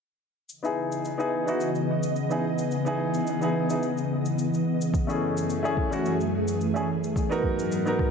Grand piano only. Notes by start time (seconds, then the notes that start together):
0.63 B3 D#4 E4 G#4
1.18 B3 D#4 E4 G#4
1.46 B3 D#4 E4 F#4
2.29 B3 D#4 E4 G#4
2.85 B3 D#4 E4 G#4
3.41 B3 D#4 E4 G#4
3.69 B3 D#4 E4 G#4
5.07 A3 C#4 E4 G#4
5.63 A3 C#4 E4 G#4
5.90 A3 C#4 E4 F#4
6.74 A3 C#4 E4 G#4
7.30 B3 D#4 F#4 A#4
7.85 B3 D#4 F#4 A#4